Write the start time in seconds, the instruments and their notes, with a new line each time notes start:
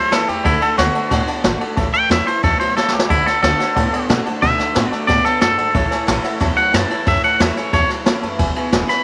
Already playing: steel-string acoustic guitar E2, clean electric guitar F#3 C5
0.11 upright bass D2, clean electric guitar A2 E3 A4, steel-string acoustic guitar E3 A3 C#4 E4, upright piano C#5 E5 B5, snare, ride
0.28 upright bass E2, clean electric guitar A2 E3 G4, steel-string acoustic guitar C#4 E4, upright piano C#5 E5 A5, ride
0.44 upright bass D2, clean electric guitar D3 A3 E4, steel-string acoustic guitar D3, upright piano D5 F#5 A5, kick, ride
0.61 clean electric guitar D3 A3 A4, upright piano D5 F#5 A5, ride
0.77 upright bass D2, steel-string acoustic guitar D3 A3 D4 F#4, clean electric guitar D3 B3 F#4, upright piano D5 F#5 A5, snare, ride
0.95 clean electric guitar D3 A3, upright piano D5 F#5 A5, ride
1.11 upright bass A2, steel-string acoustic guitar A2, clean electric guitar D3 B3, upright piano D5 F#5 A5, kick, snare, ride
1.27 clean electric guitar D3 B3, upright piano D5 F#5 A5, muted upright bass stroke, ride
1.44 upright bass G#1, steel-string acoustic guitar D3 A3 D4 F#4, clean electric guitar D3 A3, upright piano D5 F#5 A5, snare, ride
1.60 clean electric guitar D3 A3, steel-string acoustic guitar D4 F#4, upright piano D5 F#5 A5, muted upright bass stroke, ride
1.77 upright bass A1, clean electric guitar A2 E3, steel-string acoustic guitar A2, upright piano C#5 E5 A5, kick, ride
1.93 clean electric guitar A2 E3 G5, upright piano C#5 A5, muted upright bass stroke, ride
2.09 upright bass E2, clean electric guitar A2 F#3 E5, steel-string acoustic guitar E3 A3 C#4 E4, upright piano C#5 E5 A5, snare, ride
2.26 clean electric guitar A2 E3 C5, steel-string acoustic guitar C#4 E4, upright piano C#5 E5 A5, ride
2.42 upright bass E2, clean electric guitar A2 F#3 A4, steel-string acoustic guitar B2, upright piano C#5 E5 A5, kick, ride
2.59 clean electric guitar A2 F#3 C5, upright piano C#5 E5 A5, ride
2.76 upright bass D2, clean electric guitar A2 E3 A4, steel-string acoustic guitar C#3, upright piano C#5 E5 A5, snare
2.88 snare
2.93 upright bass C#2, clean electric guitar A2 E3 G4, upright piano C#5 E5 A5
2.99 snare
3.08 upright bass D2, clean electric guitar D3 A3 E4, steel-string acoustic guitar D3, upright piano D5 F#5 A5, kick, ride
3.25 clean electric guitar D3 A3 A4, upright piano D5 F#5 A5, snare, ride
3.42 upright bass D2, clean electric guitar D3 B3 A4, steel-string acoustic guitar D3 A3 D4 F#4, upright piano D5 F#5 A5, snare, ride
3.59 clean electric guitar D3 A3, steel-string acoustic guitar D4 F#4, upright piano D5 F#5 A5, snare, ride
3.75 upright bass A2, steel-string acoustic guitar A2, clean electric guitar D3 B3, upright piano D5 F#5 A5, kick, ride
3.92 clean electric guitar D3 B3, upright piano D5 F#5 A5, muted upright bass stroke, ride
4.09 upright bass B2, steel-string acoustic guitar D3 A3 D4 F#4, clean electric guitar D3 A3, upright piano D5 F#5 A5, snare, ride
4.25 clean electric guitar D3 A3, steel-string acoustic guitar D4 F#4, upright piano D5 F#5 A5, muted upright bass stroke, ride
4.42 upright bass B2, clean electric guitar D3 A3 E5, steel-string acoustic guitar D3, upright piano D5 F#5 A5, kick, ride
4.58 clean electric guitar D3 A3, upright piano D5 F#5 A5, muted upright bass stroke, snare, ride
4.74 upright bass A2, steel-string acoustic guitar D3 A3 D4 F#4, clean electric guitar D3 B3, upright piano D5 F#5 A5, snare, ride
4.89 clean electric guitar D3 A3 D5, upright piano D5 F#5 A5, muted upright bass stroke, snare, ride
5.07 upright bass A2, steel-string acoustic guitar C#3, clean electric guitar D3 B3 D5, upright piano D5 F#5 A5, kick, snare, ride
5.25 clean electric guitar D3 B3 A4, upright piano D5 F#5 A5, muted upright bass stroke, snare, ride
5.41 upright bass F#2, steel-string acoustic guitar G#2, clean electric guitar D3 A3 A4, upright piano D5 F#5 A5, snare, ride
5.58 upright bass G#1, clean electric guitar D3 A3, upright piano D5 F#5 A5, ride
5.74 upright bass A1, clean electric guitar A2 E3, steel-string acoustic guitar A2, upright piano C#5 E5 A5, kick, ride
5.91 clean electric guitar A2 E3, upright piano C#5 E5 G#5, muted upright bass stroke, snare, ride
6.07 upright bass A1, clean electric guitar A2 F#3, steel-string acoustic guitar E3 A3 C#4 E4, upright piano C#5 E5 A5, snare, ride
6.24 clean electric guitar A2 E3, steel-string acoustic guitar C#4 E4, upright piano C#5 E5 F#5, muted upright bass stroke, snare, ride
6.40 steel-string acoustic guitar E2, upright bass E2, clean electric guitar A2 F#3, upright piano C#5 E5 A5, kick, snare, ride
6.57 clean electric guitar A2 F#3 F#5, upright piano C#5 A5, muted upright bass stroke, ride
6.72 upright bass F#2, clean electric guitar A2 E3 A5, steel-string acoustic guitar E3 A3 C#4 E4, upright piano C#5 E5 A5, snare, ride
6.90 clean electric guitar A2 E3, steel-string acoustic guitar C#4 E4, upright piano C#5 E5 A5, muted upright bass stroke, ride
7.06 upright bass F#2, steel-string acoustic guitar A2, clean electric guitar A2 E3 E5, upright piano C#5 E5 A5, kick, ride
7.24 clean electric guitar A2 E3 F#5, upright piano C#5 E5 A5, muted upright bass stroke, ride
7.39 upright bass E2, clean electric guitar A2 F#3 E5, steel-string acoustic guitar E3 A3 C#4 E4, upright piano C#5 E5 A5, snare, ride
7.56 clean electric guitar A2 E3 C#5, steel-string acoustic guitar C#4 E4, upright piano C#5 E5 G#5, muted upright bass stroke, snare, ride
7.73 upright bass E2, steel-string acoustic guitar E2, clean electric guitar A2 F#3 C#5, upright piano C#5 E5 A5, kick, snare, ride
7.89 clean electric guitar A2 F#3, upright piano C#5 E5 A5, snare, ride
8.05 upright bass D2, clean electric guitar A2 E3, steel-string acoustic guitar E3 A3 C#4 E4, upright piano C#5 E5 A5, snare, ride
8.22 upright bass F#2, clean electric guitar A2 E3, upright piano C#5 E5 A5, ride
8.38 upright bass E1, clean electric guitar E2 B2, steel-string acoustic guitar E2, upright piano B4 E5 G#5, kick, ride
8.55 clean electric guitar E2 B2, upright piano B4 E5 G#5, muted upright bass stroke, ride
8.72 upright bass E1, clean electric guitar E2 C#3, steel-string acoustic guitar E3 G#3 B3 E4, upright piano B4 E5 G#5, snare, ride
8.88 clean electric guitar E2 B2 B5, steel-string acoustic guitar B3 E4, upright piano B4 E5 G#5, muted upright bass stroke, snare, ride